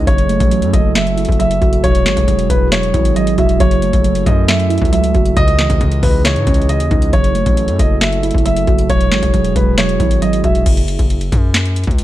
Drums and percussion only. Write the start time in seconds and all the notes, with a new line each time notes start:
0.07 kick, closed hi-hat
0.18 closed hi-hat
0.29 closed hi-hat
0.40 kick, closed hi-hat
0.51 closed hi-hat
0.62 closed hi-hat
0.73 kick, closed hi-hat
0.95 snare, clap, closed hi-hat
1.07 closed hi-hat
1.18 closed hi-hat
1.25 kick, closed hi-hat
1.32 closed hi-hat
1.40 closed hi-hat
1.51 closed hi-hat
1.62 kick, closed hi-hat
1.73 closed hi-hat
1.84 kick, closed hi-hat
1.95 closed hi-hat
2.06 snare, clap, closed hi-hat
2.17 kick, closed hi-hat
2.28 closed hi-hat
2.39 closed hi-hat
2.50 kick, closed hi-hat
2.72 snare, clap, closed hi-hat
2.83 closed hi-hat
2.94 kick, closed hi-hat
3.05 closed hi-hat
3.16 closed hi-hat
3.27 closed hi-hat
3.38 kick, closed hi-hat
3.49 closed hi-hat
3.60 kick, closed hi-hat
3.71 closed hi-hat
3.82 closed hi-hat
3.93 kick, closed hi-hat
4.04 closed hi-hat
4.15 closed hi-hat
4.26 kick, closed hi-hat
4.48 snare, clap, closed hi-hat
4.60 closed hi-hat
4.70 closed hi-hat
4.78 kick, closed hi-hat
4.85 closed hi-hat
4.93 closed hi-hat
5.04 closed hi-hat
5.15 kick, closed hi-hat
5.26 closed hi-hat
5.37 kick, closed hi-hat
5.48 closed hi-hat
5.59 snare, clap, closed hi-hat
5.70 kick, closed hi-hat
5.81 closed hi-hat
5.92 closed hi-hat
6.03 kick, open hi-hat
6.25 snare, clap, closed hi-hat
6.36 closed hi-hat
6.47 kick, closed hi-hat
6.54 closed hi-hat
6.62 closed hi-hat
6.69 closed hi-hat
6.80 closed hi-hat
6.91 kick, closed hi-hat
7.02 closed hi-hat
7.13 kick, closed hi-hat
7.24 closed hi-hat
7.35 closed hi-hat
7.46 kick, closed hi-hat
7.57 closed hi-hat
7.68 closed hi-hat
7.79 kick, closed hi-hat
8.01 snare, clap, closed hi-hat
8.13 closed hi-hat
8.23 closed hi-hat
8.31 kick, closed hi-hat
8.38 closed hi-hat
8.46 closed hi-hat
8.56 closed hi-hat
8.67 kick, closed hi-hat
8.78 closed hi-hat
8.90 kick, closed hi-hat
9.01 closed hi-hat
9.12 snare, clap, closed hi-hat
9.23 kick, closed hi-hat
9.34 closed hi-hat
9.44 closed hi-hat
9.56 kick, closed hi-hat
9.78 snare, clap, closed hi-hat
9.89 closed hi-hat
10.00 kick, closed hi-hat
10.11 closed hi-hat
10.22 closed hi-hat
10.33 closed hi-hat
10.44 kick, closed hi-hat
10.55 closed hi-hat
10.66 kick, closed hi-hat, crash
10.77 closed hi-hat
10.88 closed hi-hat
10.99 kick, closed hi-hat
11.10 closed hi-hat
11.21 closed hi-hat
11.32 kick, closed hi-hat
11.54 snare, clap, closed hi-hat
11.65 closed hi-hat
11.76 closed hi-hat
11.84 kick, closed hi-hat
11.91 closed hi-hat
11.98 closed hi-hat